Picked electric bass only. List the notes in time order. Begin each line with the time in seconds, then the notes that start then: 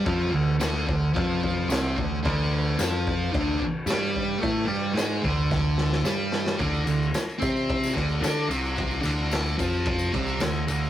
0.06 F2
0.34 D2
0.60 D2
0.88 D2
1.16 F2
1.69 C2
1.98 D2
2.25 D2
2.79 F2
3.34 D2
3.62 muted picked electric bass stroke
3.86 G2
4.43 A2
4.68 G2
4.94 G#2
5.25 D2
6.04 G2
6.59 D2
6.86 D2
7.42 C3
7.97 D2
8.22 D3
8.49 C2
9.04 D2
9.60 F2
10.14 C2
10.39 D2
10.67 D2